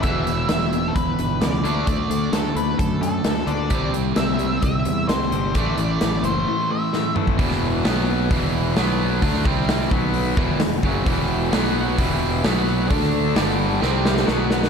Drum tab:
HH |x-x-x-x-x-x-x-x-|x-x-x-x-x-x-x-x-|x-x-x-x-x-x-x-x-|x-x-x-x---------|
SD |----o-------o---|----o-------o---|----o-------o---|----o-------o---|
T2 |----------------|----------------|----------------|--------------o-|
BD |o-------o-------|o-------o-------|o-------o-------|o--------------o|

HH |o---o---o---o---|o---o---o---o---|o---o---o---o---|o---o-----------|
SD |-o--o-------o---|-o--o-------o---|----o-------o---|-o--o---o-ooo-oo|
T2 |----------------|----------------|----------------|----------------|
BD |o-------o-------|o-o---o---o---o-|o-------o-------|o---------------|